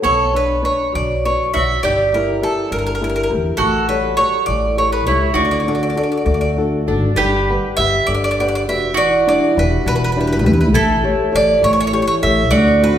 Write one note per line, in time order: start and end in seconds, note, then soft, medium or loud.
0.02 0.63 B1 medium
0.02 0.33 B3 medium
0.02 0.34 A4 medium
0.02 1.59 C#5 medium
0.34 0.62 D4 soft
0.34 0.61 B4 medium
0.34 0.65 B4 medium
0.34 0.61 C#5 soft
0.62 1.12 D4 soft
0.62 1.12 B4 soft
0.62 1.12 C#5 soft
0.62 0.92 C#5 medium
0.92 1.34 B1 medium
0.92 1.52 F#3 soft
0.92 1.24 D5 medium
1.25 1.53 B4 soft
1.25 1.52 C#5 medium
1.25 1.53 C#5 soft
1.25 1.54 D5 medium
1.54 1.74 B1 medium
1.54 1.62 F#4 medium
1.54 1.77 B4 soft
1.54 1.77 C#5 soft
1.54 1.78 D5 medium
1.54 1.80 E5 medium
1.83 2.41 G1 medium
1.83 2.14 G3 medium
1.83 3.65 G4 loud
1.83 2.12 D5 medium
2.14 2.41 E4 medium
2.14 2.41 G4 soft
2.14 2.41 A#4 medium
2.14 2.42 A#4 medium
2.42 2.90 E4 soft
2.42 2.91 G4 soft
2.42 2.69 A4 medium
2.42 2.91 A#4 soft
2.70 3.32 G1 medium
2.70 3.29 D3 soft
2.70 2.77 A#4 medium
2.79 2.85 A#4 medium
2.86 2.94 A#4 medium
2.95 3.02 A#4 medium
3.01 3.29 E4 soft
3.01 3.29 G4 soft
3.01 3.30 A#4 medium
3.01 3.08 A#4 medium
3.10 3.15 A#4 medium
3.16 3.22 A#4 medium
3.23 3.30 A#4 medium
3.30 3.49 E2 medium
3.30 3.53 E4 soft
3.30 3.53 G4 soft
3.30 3.53 A#4 medium
3.57 4.16 A1 medium
3.57 4.16 A3 medium
3.57 5.11 F#4 loud
3.57 3.87 A4 medium
3.89 4.16 G3 medium
3.89 4.17 A4 medium
3.89 4.16 B4 medium
3.89 4.18 C#5 medium
4.17 4.66 G3 soft
4.17 4.67 A4 soft
4.17 4.44 C#5 medium
4.17 4.67 C#5 soft
4.46 5.07 A1 medium
4.46 5.05 E3 medium
4.46 4.78 D5 medium
4.77 5.05 G4 soft
4.77 5.05 A4 soft
4.77 5.05 C#5 medium
4.77 4.92 C#5 medium
4.92 5.06 B4 medium
5.06 5.26 C#2 medium
5.06 5.33 E4 medium
5.06 5.29 G4 soft
5.06 5.30 A4 soft
5.06 5.34 C#5 medium
5.06 5.30 C#5 soft
5.34 5.94 D2 medium
5.34 5.95 D3 medium
5.34 6.87 F#4 medium
5.34 5.43 D5 medium
5.45 5.50 D5 medium
5.51 5.59 D5 medium
5.60 5.67 D5 soft
5.67 5.95 D4 medium
5.67 5.95 F#4 soft
5.67 5.95 A4 medium
5.67 5.74 D5 medium
5.75 5.82 D5 medium
5.83 5.88 D5 medium
5.90 5.96 D5 soft
5.96 6.46 D4 soft
5.96 6.46 F#4 soft
5.96 6.46 A4 medium
5.96 6.02 D5 medium
6.03 6.10 D5 soft
6.12 6.16 D5 soft
6.17 6.25 D5 soft
6.25 6.90 D2 medium
6.25 6.85 A3 medium
6.25 6.33 D5 soft
6.34 6.40 D5 soft
6.41 6.49 D5 medium
6.57 6.86 D4 soft
6.57 6.86 F#4 soft
6.57 6.87 A4 soft
6.87 7.07 G#1 medium
6.87 7.10 D4 soft
6.87 7.15 D4 soft
6.87 7.11 F#4 soft
6.87 7.11 A4 soft
7.16 7.56 G1 medium
7.16 7.76 G3 medium
7.16 8.94 G4 loud
7.16 7.74 B4 medium
7.50 7.78 G4 soft
7.50 7.79 B4 medium
7.50 7.78 F#5 soft
7.77 7.97 G1 medium
7.77 8.28 G4 soft
7.77 8.28 B4 soft
7.77 8.07 E5 loud
7.77 8.27 F#5 soft
8.07 8.68 G1 medium
8.07 8.66 D3 soft
8.07 8.13 D5 medium
8.14 8.22 D5 medium
8.24 8.30 D5 medium
8.31 8.38 D5 medium
8.40 8.67 G4 soft
8.40 8.68 B4 soft
8.40 8.46 D5 medium
8.40 8.85 F#5 medium
8.48 8.54 D5 medium
8.55 8.61 D5 medium
8.68 8.97 F1 medium
8.68 8.91 F#4 soft
8.68 8.91 G4 soft
8.68 8.91 B4 soft
8.68 8.97 E5 medium
8.94 9.36 E1 medium
8.94 9.55 E3 medium
8.94 10.69 F#4 loud
8.94 9.27 D5 medium
9.27 9.55 G3 medium
9.27 9.55 D4 medium
9.27 9.55 E4 soft
9.27 9.55 D5 medium
9.56 9.75 E1 medium
9.56 10.05 G3 soft
9.56 10.04 D4 soft
9.56 10.05 E4 soft
9.56 9.86 B4 medium
9.85 10.47 E1 loud
9.85 10.44 B2 medium
9.85 9.94 B4 medium
9.96 10.02 B4 medium
10.04 10.10 B4 medium
10.12 10.18 B4 medium
10.16 10.63 G3 medium
10.16 10.42 D4 soft
10.16 10.43 E4 medium
10.21 10.25 B4 medium
10.27 10.31 B4 medium
10.33 10.38 B4 medium
10.39 10.45 B4 soft
10.43 10.75 E2 medium
10.43 10.67 D4 soft
10.43 10.67 E4 soft
10.43 10.67 G4 medium
10.43 10.52 B4 medium
10.53 10.60 B4 medium
10.61 10.67 B4 medium
10.73 11.13 A1 loud
10.73 11.31 A3 medium
10.73 12.47 E4 medium
10.73 11.36 A4 medium
11.04 11.30 G4 medium
11.04 11.31 A4 medium
11.04 11.31 C#5 medium
11.32 11.53 A1 medium
11.32 11.80 G4 soft
11.32 11.81 A4 soft
11.32 11.81 C#5 soft
11.36 11.61 D5 loud
11.61 12.02 A1 loud
11.61 12.20 E3 medium
11.61 11.70 C#5 medium
11.73 11.79 C#5 medium
11.80 11.86 C#5 medium
11.87 11.92 C#5 medium
11.93 12.22 G4 medium
11.93 12.21 A4 soft
11.93 12.00 C#5 medium
11.93 12.22 C#5 medium
12.02 12.06 C#5 medium
12.07 12.14 C#5 medium
12.23 12.51 A1 medium
12.23 12.45 G4 soft
12.23 12.45 A4 soft
12.23 12.46 C#5 soft
12.23 12.52 E5 medium
12.51 12.90 D2 loud
12.51 12.98 D3 medium
12.51 12.98 F#4 medium
12.51 12.80 D5 loud
12.81 12.98 C4 medium
12.81 12.98 D4 medium
12.81 12.98 F#4 medium
12.81 12.98 B4 medium